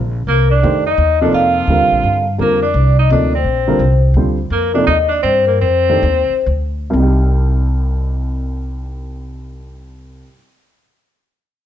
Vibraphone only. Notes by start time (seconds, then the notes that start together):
0.29 A#4
0.50 D5
0.87 D#5
1.25 D5
1.35 F5
2.42 A#4
2.65 D5
3.00 D#5
3.13 D5
3.34 C5
4.53 A#4
4.75 D5
4.87 D#5
5.12 D5
5.23 C5
5.46 A#4
5.62 C5